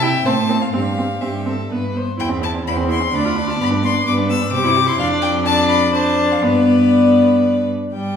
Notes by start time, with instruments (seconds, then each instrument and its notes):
Already playing: cello C3, violin E5
0.02 viola E4, violin G5
0.25 cello A2, viola C4, violin C5 A5
0.49 viola C4
0.62 violin F5
0.73 cello G2, viola C4, violin G4 F5
0.98 viola C4
1.21 cello G2, viola C4, violin G4 E5
1.46 viola C4, violin A4
1.71 cello G2, viola B3, violin B4
1.95 viola B3, violin C5
2.18 cello E2, viola E4, violin G5
2.29 viola C4
2.42 viola E4, violin A5
2.54 viola C4
2.65 cello E2, viola E4, violin C5 B5
2.77 viola C4
2.89 viola E4, violin C6
3.01 viola C4
3.14 cello D2, viola D4, violin D5 B5
3.25 viola F4
3.36 viola D4
3.47 viola F4, violin A5
3.59 cello G2, viola B3, violin B5
3.71 viola D4
3.83 viola B3, violin C6
3.94 viola D4
4.06 cello G2, viola B3, violin B4 D6
4.18 viola D4
4.29 viola B3, violin E6
4.42 viola D4
4.52 cello C3, viola G4, violin C5 D6
4.64 viola E4
4.76 viola G4
4.87 viola E4, violin C6
4.98 cello F2, viola D4, violin D5 F5
5.22 violin G5
5.45 viola D4, violin D5 A5
5.68 violin B5
5.93 viola D4, violin C5 A5
6.32 violin F5
6.43 cello G2, viola B3, violin B4 D5
7.93 cello G2, viola G3, violin G4 G5